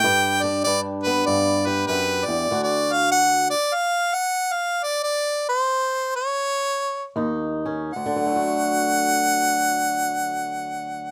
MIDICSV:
0, 0, Header, 1, 3, 480
1, 0, Start_track
1, 0, Tempo, 617920
1, 28, Time_signature, 4, 2, 24, 8
1, 2908, Tempo, 658617
1, 4348, Tempo, 724638
1, 5308, Tempo, 802139
1, 7668, End_track
2, 0, Start_track
2, 0, Title_t, "Harmonica"
2, 0, Program_c, 0, 22
2, 0, Note_on_c, 0, 79, 106
2, 333, Note_on_c, 0, 74, 86
2, 345, Note_off_c, 0, 79, 0
2, 494, Note_off_c, 0, 74, 0
2, 498, Note_on_c, 0, 74, 100
2, 622, Note_off_c, 0, 74, 0
2, 802, Note_on_c, 0, 71, 87
2, 970, Note_off_c, 0, 71, 0
2, 980, Note_on_c, 0, 74, 90
2, 1294, Note_on_c, 0, 71, 77
2, 1306, Note_off_c, 0, 74, 0
2, 1448, Note_off_c, 0, 71, 0
2, 1453, Note_on_c, 0, 71, 80
2, 1752, Note_on_c, 0, 74, 89
2, 1763, Note_off_c, 0, 71, 0
2, 2036, Note_off_c, 0, 74, 0
2, 2043, Note_on_c, 0, 74, 84
2, 2275, Note_on_c, 0, 77, 94
2, 2287, Note_off_c, 0, 74, 0
2, 2415, Note_off_c, 0, 77, 0
2, 2420, Note_on_c, 0, 78, 101
2, 2703, Note_off_c, 0, 78, 0
2, 2721, Note_on_c, 0, 74, 83
2, 2907, Note_on_c, 0, 77, 89
2, 2918, Note_off_c, 0, 74, 0
2, 3201, Note_on_c, 0, 78, 76
2, 3212, Note_off_c, 0, 77, 0
2, 3478, Note_on_c, 0, 77, 69
2, 3489, Note_off_c, 0, 78, 0
2, 3702, Note_on_c, 0, 74, 78
2, 3713, Note_off_c, 0, 77, 0
2, 3844, Note_off_c, 0, 74, 0
2, 3848, Note_on_c, 0, 74, 78
2, 4155, Note_off_c, 0, 74, 0
2, 4182, Note_on_c, 0, 72, 84
2, 4613, Note_off_c, 0, 72, 0
2, 4640, Note_on_c, 0, 73, 91
2, 5282, Note_off_c, 0, 73, 0
2, 5766, Note_on_c, 0, 78, 92
2, 7668, Note_off_c, 0, 78, 0
2, 7668, End_track
3, 0, Start_track
3, 0, Title_t, "Steel-string acoustic guitar"
3, 0, Program_c, 1, 25
3, 28, Note_on_c, 1, 43, 69
3, 34, Note_on_c, 1, 67, 61
3, 339, Note_on_c, 1, 62, 60
3, 507, Note_off_c, 1, 43, 0
3, 517, Note_on_c, 1, 43, 69
3, 828, Note_on_c, 1, 59, 61
3, 982, Note_off_c, 1, 43, 0
3, 991, Note_on_c, 1, 43, 72
3, 1285, Note_off_c, 1, 67, 0
3, 1295, Note_on_c, 1, 67, 60
3, 1464, Note_off_c, 1, 43, 0
3, 1467, Note_on_c, 1, 42, 62
3, 1765, Note_off_c, 1, 42, 0
3, 1770, Note_on_c, 1, 40, 61
3, 1925, Note_off_c, 1, 67, 0
3, 1931, Note_off_c, 1, 59, 0
3, 1945, Note_off_c, 1, 40, 0
3, 1950, Note_on_c, 1, 38, 76
3, 1957, Note_on_c, 1, 66, 69
3, 2745, Note_off_c, 1, 38, 0
3, 2745, Note_off_c, 1, 62, 0
3, 2745, Note_off_c, 1, 66, 0
3, 5300, Note_on_c, 1, 39, 71
3, 5305, Note_on_c, 1, 63, 64
3, 5600, Note_on_c, 1, 61, 57
3, 5752, Note_off_c, 1, 39, 0
3, 5754, Note_off_c, 1, 63, 0
3, 5756, Note_off_c, 1, 61, 0
3, 5782, Note_on_c, 1, 38, 59
3, 5841, Note_on_c, 1, 50, 61
3, 5902, Note_on_c, 1, 54, 59
3, 5960, Note_on_c, 1, 57, 51
3, 6020, Note_on_c, 1, 66, 53
3, 7668, Note_off_c, 1, 38, 0
3, 7668, Note_off_c, 1, 50, 0
3, 7668, Note_off_c, 1, 54, 0
3, 7668, Note_off_c, 1, 57, 0
3, 7668, Note_off_c, 1, 66, 0
3, 7668, End_track
0, 0, End_of_file